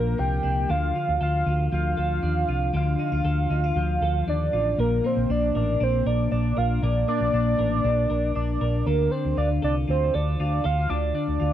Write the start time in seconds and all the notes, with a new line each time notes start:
Already playing: A#1 A#2 F3 A#3 D4 A#4
0.18 C2 A#3 G5
0.43 C2 D4
0.69 D2 D3 A4 F5
0.96 F4
1.09 D2
1.21 D2 A4 F5
1.46 D2 F4
1.72 D2 F3 F5
1.97 D2 A4
2.23 D#2 D4
2.48 C2 F4
2.73 D2 D3 A4 F5
2.99 D#4
3.12 D2 F4
3.25 D2 A4
3.50 D2 D#4
3.64 F4
3.76 D2 F3
4.01 D2 A4
4.27 D#2 D4 D5
4.53 A1 F4
4.78 A#1 A#2 A#4
5.04 A#3 C5
5.17 A#1
5.29 A#1 D4 D5
5.55 A1 A#4 D5
5.80 A#1 D4 C5
6.06 A#1 A#4 D5
6.31 A#1 D4 D5
6.57 A#1 A#4 F5
6.83 A#1 A#2 A#4 D5
7.08 A#3 D5
7.21 A#1
7.33 A#1 D4
7.59 A1 A#4
7.84 A#1 D4
8.10 A#1 A#4
8.35 A#1 D4 D5
8.61 A#1 A#4
8.86 D2 D3 A4 A#4
9.11 D4 C5
9.25 D2
9.37 D2 F4 D5
9.62 C2 A4 D5
9.88 D2 F4 C5
10.14 D2 A4 D5
10.40 D2 F4 D5
10.64 D2 A4 F5
10.90 D2 D3 A4 D5
11.15 D4 D5
11.28 D2
11.40 D2 F4